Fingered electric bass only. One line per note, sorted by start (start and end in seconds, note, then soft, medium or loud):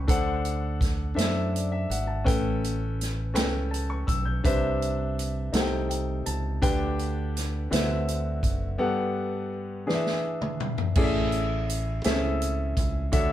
0.08 1.13 D2 loud
1.17 1.86 F#2 medium
1.90 2.23 G#1 medium
2.27 3.35 A1 loud
3.35 4.04 C#2 medium
4.08 4.41 B1 medium
4.45 5.49 C2 loud
5.53 6.22 C2 loud
6.27 6.59 C#2 medium
6.63 7.67 D2 loud
7.72 8.40 D2 loud
8.43 8.76 F#1 medium
10.96 12.01 A1 medium
12.06 12.74 C#2 medium
12.78 13.11 C#2 medium
13.13 13.32 D2 loud